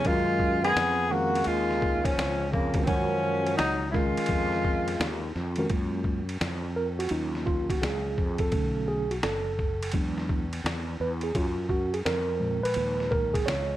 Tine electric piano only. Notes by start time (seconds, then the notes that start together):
0.04 D#3 F#3 G#3 C#4 A#4
1.10 D#3 G#3 C#4 G#4 A#4
2.74 D#3 G#3 C#4 F#4 A#4
2.86 D#3 G#3 C#4 A#4 F#5
3.93 D#3 G#3 C#4 F4 A#4
5.57 D#3 G#3 C#4 F#4 A#4
5.70 G#3 A#3 F4
6.76 A#4
6.99 F#4
7.10 F#3 C#4 D#4 F4
7.46 F4
7.70 F#4
7.82 G#4
8.40 A4
8.52 D3 A3 C#4
8.88 G#4
9.11 F#4
9.24 A4
9.93 F#3 G#3 D4
11.01 B4
11.24 G#4
11.36 F4
11.70 F#4
11.94 G#4
12.06 A#4
12.40 A#2 F3 G#3
12.63 B4
13.11 A#4
13.34 G#4
13.46 C#5